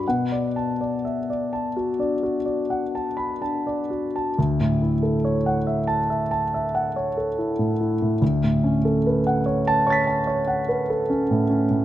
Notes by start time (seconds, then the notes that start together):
0.08 B2 F#5
0.32 D5
0.56 A5
0.81 D5
1.05 E5
1.30 D5
1.53 A5
1.77 F#4
1.99 D4 D5
2.23 F#4
2.45 D5
2.70 F#5
2.95 A5
3.17 B5
3.41 D4 A5
3.67 D5
3.90 F#4
4.16 A5
4.39 D2
4.60 A2
4.82 E4
5.03 A4
5.25 C#5
5.46 F#5
5.67 E5
5.87 A5
6.10 E5
6.31 A5
6.54 E5
6.75 F#5
6.96 C#5
7.17 A4
7.38 E4
7.59 A2
7.81 E4
8.02 A2
8.22 D2
8.44 A2
8.64 C#4
8.85 A4
9.07 B4
9.27 F#5
9.46 C#5
9.67 A5
9.87 C#5 C#6 A6
9.92 B6
10.07 A5
10.27 C#5
10.47 F#5
10.69 B4
10.90 A4
11.10 C#4
11.31 A2
11.50 C#4
11.71 A2